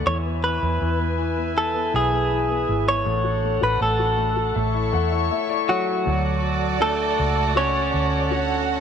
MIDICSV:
0, 0, Header, 1, 6, 480
1, 0, Start_track
1, 0, Key_signature, 2, "major"
1, 0, Tempo, 750000
1, 39, Time_signature, 4, 2, 24, 8
1, 5633, End_track
2, 0, Start_track
2, 0, Title_t, "String section"
2, 0, Program_c, 0, 48
2, 41, Note_on_c, 0, 76, 54
2, 45, Note_on_c, 0, 80, 49
2, 47, Note_on_c, 0, 71, 58
2, 1941, Note_off_c, 0, 76, 0
2, 1943, Note_off_c, 0, 80, 0
2, 1944, Note_off_c, 0, 71, 0
2, 1964, Note_on_c, 0, 69, 60
2, 1966, Note_on_c, 0, 62, 50
2, 1966, Note_on_c, 0, 78, 55
2, 2913, Note_off_c, 0, 62, 0
2, 2913, Note_off_c, 0, 78, 0
2, 2928, Note_on_c, 0, 76, 65
2, 2929, Note_on_c, 0, 85, 75
2, 2931, Note_on_c, 0, 73, 62
2, 3862, Note_off_c, 0, 69, 0
2, 3874, Note_off_c, 0, 76, 0
2, 3874, Note_off_c, 0, 85, 0
2, 3875, Note_off_c, 0, 73, 0
2, 3883, Note_on_c, 0, 69, 60
2, 3885, Note_on_c, 0, 78, 55
2, 3885, Note_on_c, 0, 81, 65
2, 5633, Note_off_c, 0, 69, 0
2, 5633, Note_off_c, 0, 78, 0
2, 5633, Note_off_c, 0, 81, 0
2, 5633, End_track
3, 0, Start_track
3, 0, Title_t, "Violin section"
3, 0, Program_c, 1, 48
3, 3881, Note_on_c, 1, 74, 89
3, 3884, Note_on_c, 1, 66, 79
3, 5294, Note_off_c, 1, 74, 0
3, 5296, Note_off_c, 1, 66, 0
3, 5316, Note_on_c, 1, 78, 91
3, 5321, Note_on_c, 1, 66, 73
3, 5633, Note_off_c, 1, 66, 0
3, 5633, Note_off_c, 1, 78, 0
3, 5633, End_track
4, 0, Start_track
4, 0, Title_t, "Clean electric guitar"
4, 0, Program_c, 2, 27
4, 44, Note_on_c, 2, 73, 98
4, 108, Note_off_c, 2, 73, 0
4, 281, Note_on_c, 2, 71, 91
4, 974, Note_off_c, 2, 71, 0
4, 1009, Note_on_c, 2, 69, 88
4, 1251, Note_off_c, 2, 69, 0
4, 1253, Note_on_c, 2, 68, 84
4, 1844, Note_off_c, 2, 68, 0
4, 1846, Note_on_c, 2, 73, 104
4, 2324, Note_off_c, 2, 73, 0
4, 2326, Note_on_c, 2, 71, 78
4, 2435, Note_off_c, 2, 71, 0
4, 2447, Note_on_c, 2, 69, 68
4, 3138, Note_off_c, 2, 69, 0
4, 3643, Note_on_c, 2, 66, 84
4, 3648, Note_on_c, 2, 54, 66
4, 4338, Note_off_c, 2, 54, 0
4, 4364, Note_on_c, 2, 69, 92
4, 4368, Note_on_c, 2, 57, 65
4, 4383, Note_off_c, 2, 66, 0
4, 4816, Note_off_c, 2, 69, 0
4, 4818, Note_off_c, 2, 57, 0
4, 4846, Note_on_c, 2, 73, 92
4, 4850, Note_on_c, 2, 61, 68
4, 5633, Note_off_c, 2, 61, 0
4, 5633, Note_off_c, 2, 73, 0
4, 5633, End_track
5, 0, Start_track
5, 0, Title_t, "Grand piano"
5, 0, Program_c, 3, 0
5, 0, Control_c, 3, 64, 127
5, 41, Note_on_c, 3, 52, 52
5, 46, Control_c, 3, 64, 0
5, 160, Control_c, 3, 64, 127
5, 161, Note_on_c, 3, 59, 45
5, 269, Note_off_c, 3, 52, 0
5, 279, Note_on_c, 3, 52, 53
5, 392, Note_off_c, 3, 59, 0
5, 402, Note_on_c, 3, 59, 45
5, 512, Note_off_c, 3, 52, 0
5, 522, Note_on_c, 3, 52, 53
5, 627, Note_off_c, 3, 59, 0
5, 637, Note_on_c, 3, 59, 55
5, 747, Note_off_c, 3, 52, 0
5, 757, Note_on_c, 3, 52, 53
5, 864, Note_off_c, 3, 59, 0
5, 873, Note_on_c, 3, 59, 48
5, 981, Note_off_c, 3, 52, 0
5, 991, Note_on_c, 3, 52, 56
5, 1102, Note_off_c, 3, 59, 0
5, 1112, Note_on_c, 3, 59, 52
5, 1221, Note_off_c, 3, 52, 0
5, 1230, Note_on_c, 3, 52, 50
5, 1342, Note_off_c, 3, 59, 0
5, 1352, Note_on_c, 3, 59, 50
5, 1461, Note_off_c, 3, 52, 0
5, 1471, Note_on_c, 3, 52, 52
5, 1582, Note_off_c, 3, 59, 0
5, 1592, Note_on_c, 3, 59, 47
5, 1708, Note_off_c, 3, 52, 0
5, 1718, Note_on_c, 3, 52, 55
5, 1828, Note_off_c, 3, 59, 0
5, 1838, Note_on_c, 3, 59, 44
5, 1951, Note_off_c, 3, 52, 0
5, 1955, Note_off_c, 3, 59, 0
5, 1955, Note_on_c, 3, 57, 64
5, 1968, Control_c, 3, 64, 0
5, 2074, Control_c, 3, 64, 127
5, 2074, Note_on_c, 3, 66, 47
5, 2188, Note_off_c, 3, 57, 0
5, 2198, Note_on_c, 3, 57, 53
5, 2303, Note_off_c, 3, 66, 0
5, 2312, Note_on_c, 3, 66, 55
5, 2425, Note_off_c, 3, 57, 0
5, 2435, Note_on_c, 3, 57, 55
5, 2546, Note_off_c, 3, 66, 0
5, 2555, Note_on_c, 3, 66, 56
5, 2661, Note_off_c, 3, 57, 0
5, 2670, Note_on_c, 3, 57, 51
5, 2783, Note_off_c, 3, 66, 0
5, 2793, Note_on_c, 3, 66, 49
5, 2903, Note_off_c, 3, 57, 0
5, 2912, Note_off_c, 3, 66, 0
5, 2913, Note_on_c, 3, 57, 69
5, 2926, Control_c, 3, 64, 0
5, 3035, Note_on_c, 3, 64, 50
5, 3036, Control_c, 3, 64, 127
5, 3144, Note_off_c, 3, 57, 0
5, 3153, Note_on_c, 3, 57, 56
5, 3155, Note_on_c, 3, 78, 65
5, 3269, Note_off_c, 3, 64, 0
5, 3269, Note_off_c, 3, 78, 0
5, 3278, Note_on_c, 3, 64, 54
5, 3279, Note_on_c, 3, 76, 67
5, 3389, Note_off_c, 3, 76, 0
5, 3390, Note_off_c, 3, 57, 0
5, 3399, Note_on_c, 3, 76, 68
5, 3400, Note_on_c, 3, 57, 49
5, 3506, Note_off_c, 3, 64, 0
5, 3511, Note_off_c, 3, 76, 0
5, 3515, Note_on_c, 3, 74, 65
5, 3516, Note_on_c, 3, 64, 52
5, 3627, Note_off_c, 3, 57, 0
5, 3629, Note_off_c, 3, 74, 0
5, 3637, Note_on_c, 3, 57, 61
5, 3638, Note_on_c, 3, 73, 65
5, 3744, Note_off_c, 3, 64, 0
5, 3754, Note_on_c, 3, 64, 53
5, 3862, Note_off_c, 3, 73, 0
5, 3871, Note_off_c, 3, 57, 0
5, 3873, Note_off_c, 3, 64, 0
5, 3875, Note_on_c, 3, 54, 63
5, 3888, Control_c, 3, 64, 0
5, 4002, Control_c, 3, 64, 127
5, 4351, Note_on_c, 3, 62, 54
5, 4354, Note_on_c, 3, 66, 44
5, 4356, Note_on_c, 3, 69, 48
5, 4821, Note_off_c, 3, 62, 0
5, 4822, Note_off_c, 3, 66, 0
5, 4823, Note_off_c, 3, 69, 0
5, 4833, Note_on_c, 3, 57, 45
5, 4835, Note_on_c, 3, 66, 45
5, 4838, Note_on_c, 3, 69, 54
5, 5302, Note_off_c, 3, 57, 0
5, 5303, Note_off_c, 3, 66, 0
5, 5304, Note_off_c, 3, 69, 0
5, 5316, Note_on_c, 3, 50, 46
5, 5319, Note_on_c, 3, 66, 41
5, 5321, Note_on_c, 3, 69, 50
5, 5633, Note_off_c, 3, 50, 0
5, 5633, Note_off_c, 3, 54, 0
5, 5633, Note_off_c, 3, 66, 0
5, 5633, Note_off_c, 3, 69, 0
5, 5633, End_track
6, 0, Start_track
6, 0, Title_t, "Fingered electric bass"
6, 0, Program_c, 4, 33
6, 40, Note_on_c, 4, 40, 100
6, 374, Note_off_c, 4, 40, 0
6, 400, Note_on_c, 4, 40, 82
6, 511, Note_off_c, 4, 40, 0
6, 522, Note_on_c, 4, 40, 75
6, 1215, Note_off_c, 4, 40, 0
6, 1241, Note_on_c, 4, 35, 72
6, 1695, Note_off_c, 4, 35, 0
6, 1721, Note_on_c, 4, 32, 72
6, 1943, Note_off_c, 4, 32, 0
6, 1958, Note_on_c, 4, 33, 99
6, 2293, Note_off_c, 4, 33, 0
6, 2318, Note_on_c, 4, 33, 81
6, 2430, Note_off_c, 4, 33, 0
6, 2436, Note_on_c, 4, 33, 95
6, 2892, Note_off_c, 4, 33, 0
6, 2918, Note_on_c, 4, 33, 87
6, 3142, Note_off_c, 4, 33, 0
6, 3158, Note_on_c, 4, 40, 77
6, 3382, Note_off_c, 4, 40, 0
6, 3882, Note_on_c, 4, 38, 103
6, 4575, Note_off_c, 4, 38, 0
6, 4604, Note_on_c, 4, 37, 81
6, 5056, Note_off_c, 4, 37, 0
6, 5081, Note_on_c, 4, 38, 84
6, 5633, Note_off_c, 4, 38, 0
6, 5633, End_track
0, 0, End_of_file